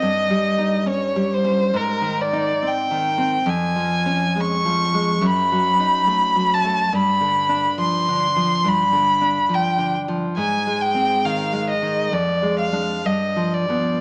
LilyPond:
<<
  \new Staff \with { instrumentName = "Violin" } { \time 4/4 \key g \phrygian \tempo 4 = 70 ees''4 des''8 c''8 bes'8 d''8 g''4 | aes''4 des'''4 b''4. a''8 | b''4 c'''4 b''4 g''8 r8 | aes''8 g''8 f''8 ees''8 d''8 f''8 ees''8 d''8 | }
  \new Staff \with { instrumentName = "Nylon-string guitar" } { \clef bass \time 4/4 \key g \phrygian \tuplet 3/2 { g,8 g8 ees'8 des'8 g8 des'8 aes,8 ees8 ees'8 c'8 ees8 c'8 } | \tuplet 3/2 { f,8 f8 des'8 aes8 f8 aes8 fis,8 fis8 ees'8 a8 fis8 a8 } | \tuplet 3/2 { g,8 d8 d'8 f8 d8 f8 g,8 d8 d'8 f8 d8 f8 } | \tuplet 3/2 { aes,8 aes8 c'8 ees8 aes8 ees8 f,8 aes8 <aes d'>8 g,8 f8 <f b>8 } | }
>>